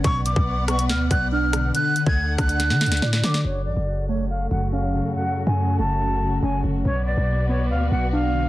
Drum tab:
HH |x---x-------x-x-x---x-------x---|x---x-------x-x-x---xxxx----x---|--------------------------------|--------------------------------|
SD |------------r---o-----------r---|------------r---o-o-o-o-o-o-o-o-|--------------------------------|--------------------------------|
BD |o-----o-------------o-----------|------o-----o-------------------|--------------------------------|--------------------------------|

HH |--------------------------------|
SD |--------------------------------|
BD |--------------------------------|